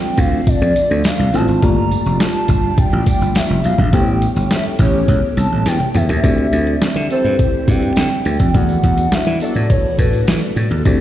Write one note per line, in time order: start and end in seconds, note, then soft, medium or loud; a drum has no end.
0.00 1.58 D3 medium
0.00 1.58 F3 medium
0.00 1.58 A3 medium
0.00 1.29 C4 medium
0.00 1.58 C4 medium
0.00 1.58 D4 medium
0.00 1.30 F4 medium
0.00 1.30 A4 medium
0.00 1.29 E5 medium
0.00 1.30 F5 medium
0.00 0.20 G5 loud
0.17 0.40 D2 medium
0.17 0.49 F5 loud
0.17 kick loud
0.17 closed hi-hat medium
0.17 tambourine medium
0.47 1.08 D5 loud
0.47 kick loud
0.47 closed hi-hat medium
0.47 tambourine soft
0.62 0.73 F2 loud
0.76 closed hi-hat medium
0.76 tambourine medium
0.91 1.02 D2 medium
1.04 1.36 F5 loud
1.04 snare loud
1.04 closed hi-hat medium
1.04 tambourine medium
1.19 1.30 C2 medium
1.33 1.45 A1 loud
1.33 1.62 C4 medium
1.33 1.62 E4 medium
1.33 1.61 F4 medium
1.33 1.63 A4 soft
1.33 1.63 C5 medium
1.33 1.63 A5 loud
1.33 closed hi-hat medium
1.33 tambourine medium
1.48 1.59 G#1 loud
1.48 tambourine soft
1.62 1.96 G1 loud
1.62 3.91 G3 medium
1.62 3.90 A3 medium
1.62 3.89 A#3 medium
1.62 3.91 D4 medium
1.62 3.89 F4 medium
1.62 3.91 F4 medium
1.62 3.91 G4 medium
1.62 3.89 G4 medium
1.62 3.91 D5 loud
1.62 3.90 D5 medium
1.62 2.17 A#5 loud
1.62 kick loud
1.62 closed hi-hat loud
1.62 tambourine medium
1.91 closed hi-hat medium
1.91 tambourine medium
2.05 2.17 F1 loud
2.05 tambourine soft
2.20 2.72 A5 loud
2.20 snare loud
2.20 closed hi-hat medium
2.20 tambourine medium
2.48 2.71 G1 medium
2.48 kick medium
2.48 closed hi-hat medium
2.48 tambourine soft
2.72 2.80 A5 medium
2.78 3.38 G5 loud
2.78 kick loud
2.78 closed hi-hat medium
2.78 tambourine soft
2.93 3.04 A1 medium
3.06 kick medium
3.06 closed hi-hat medium
3.06 tambourine medium
3.21 3.32 G1 medium
3.21 tambourine soft
3.35 3.66 E5 loud
3.35 snare loud
3.35 closed hi-hat medium
3.35 tambourine medium
3.50 3.61 F1 medium
3.64 3.76 B1 loud
3.64 3.93 F5 loud
3.64 closed hi-hat medium
3.64 tambourine medium
3.78 3.90 A#1 medium
3.78 kick loud
3.93 4.26 A1 loud
3.93 4.05 E3 medium
3.93 6.21 A3 medium
3.93 6.20 B3 medium
3.93 6.21 C#4 medium
3.93 4.05 C#4 medium
3.93 6.20 E4 medium
3.93 6.21 G4 medium
3.93 4.05 G4 loud
3.93 6.20 G4 medium
3.93 6.20 A4 medium
3.93 4.00 C5 medium
3.93 4.47 G5 loud
3.93 kick loud
3.93 closed hi-hat loud
3.93 tambourine soft
4.00 6.24 C#5 medium
4.22 closed hi-hat medium
4.22 tambourine medium
4.36 4.47 G1 loud
4.36 tambourine soft
4.51 4.65 E5 loud
4.51 snare loud
4.51 closed hi-hat loud
4.51 tambourine medium
4.79 5.01 A1 medium
4.79 5.04 E3 loud
4.79 5.04 C#4 loud
4.79 5.04 G4 loud
4.79 5.34 C#5 loud
4.79 kick loud
4.79 closed hi-hat medium
4.79 tambourine medium
5.08 5.20 C#2 medium
5.08 kick loud
5.08 closed hi-hat medium
5.08 tambourine soft
5.37 5.48 C2 loud
5.37 5.69 A5 loud
5.37 closed hi-hat medium
5.37 tambourine medium
5.52 5.63 A1 medium
5.66 5.77 E2 loud
5.66 5.97 G5 loud
5.66 snare medium
5.66 closed hi-hat medium
5.66 tambourine medium
5.80 high tom medium
5.94 6.06 E2 medium
5.94 7.11 E5 loud
5.94 mid tom loud
5.94 open hi-hat medium
5.94 tambourine soft
6.09 6.20 D#2 medium
6.09 floor tom medium
6.23 6.46 D2 loud
6.23 8.53 D3 medium
6.23 8.52 A3 medium
6.23 7.65 C4 medium
6.23 8.52 C4 medium
6.23 8.52 E4 medium
6.23 7.65 E4 medium
6.23 8.52 G4 medium
6.23 7.65 G4 medium
6.23 7.66 D5 medium
6.23 kick loud
6.23 closed hi-hat medium
6.23 tambourine soft
6.38 closed hi-hat soft
6.52 6.75 D2 medium
6.52 closed hi-hat medium
6.52 tambourine soft
6.67 closed hi-hat medium
6.82 muted slap bass stroke soft
6.82 snare loud
6.82 closed hi-hat medium
6.82 tambourine medium
6.96 7.07 D3 loud
6.96 closed hi-hat soft
7.10 7.35 E3 loud
7.10 7.35 C4 loud
7.10 7.35 A4 loud
7.10 7.71 C5 loud
7.10 open hi-hat medium
7.10 tambourine medium
7.24 7.36 G2 medium
7.24 closed hi-hat soft
7.39 kick loud
7.39 closed hi-hat medium
7.39 tambourine soft
7.68 7.90 G2 medium
7.68 8.55 C4 soft
7.68 8.53 E4 soft
7.68 7.75 F#4 soft
7.68 8.54 D5 medium
7.68 8.57 G5 loud
7.68 kick medium
7.68 closed hi-hat medium
7.68 tambourine medium
7.75 8.58 G4 soft
7.82 closed hi-hat medium
7.96 8.08 D3 medium
7.96 snare loud
7.96 closed hi-hat medium
7.96 tambourine medium
8.25 8.37 D2 medium
8.25 closed hi-hat medium
8.25 tambourine soft
8.39 8.51 F2 medium
8.39 kick loud
8.39 closed hi-hat medium
8.39 tambourine soft
8.54 8.77 E2 loud
8.54 10.83 E3 medium
8.54 10.81 A3 medium
8.54 10.83 B3 medium
8.54 10.83 D4 medium
8.54 10.81 E4 medium
8.54 10.82 F#4 medium
8.54 10.83 F#4 medium
8.54 10.83 A4 medium
8.54 10.82 D5 medium
8.54 9.15 F#5 loud
8.54 kick loud
8.54 closed hi-hat medium
8.54 tambourine soft
8.69 closed hi-hat soft
8.69 tambourine soft
8.84 9.06 E2 loud
8.84 kick loud
8.84 closed hi-hat medium
8.84 tambourine soft
8.98 closed hi-hat medium
8.98 tambourine soft
9.12 9.43 E5 loud
9.12 muted slap bass stroke soft
9.12 snare loud
9.12 closed hi-hat loud
9.12 tambourine medium
9.27 9.38 E3 loud
9.27 closed hi-hat soft
9.40 9.66 F#3 loud
9.40 9.66 D4 loud
9.40 9.66 A4 loud
9.40 9.70 D5 medium
9.40 open hi-hat medium
9.40 tambourine soft
9.55 9.67 A2 medium
9.55 closed hi-hat soft
9.70 9.98 C#5 loud
9.70 kick loud
9.70 closed hi-hat medium
9.70 tambourine soft
9.98 10.21 A2 medium
9.98 10.53 B4 medium
9.98 kick loud
9.98 closed hi-hat medium
9.98 tambourine medium
10.13 closed hi-hat medium
10.13 tambourine soft
10.27 10.39 E3 medium
10.27 snare loud
10.27 closed hi-hat medium
10.27 tambourine medium
10.56 10.68 A2 loud
10.56 closed hi-hat medium
10.56 tambourine medium
10.71 10.82 D#2 medium
10.71 closed hi-hat medium
10.85 11.01 D2 loud
10.85 11.01 D3 medium
10.85 11.01 A3 medium
10.85 11.01 C4 medium
10.85 11.01 E4 medium
10.85 11.01 G4 medium
10.85 11.01 D5 medium
10.85 kick loud
10.85 closed hi-hat medium
10.85 tambourine medium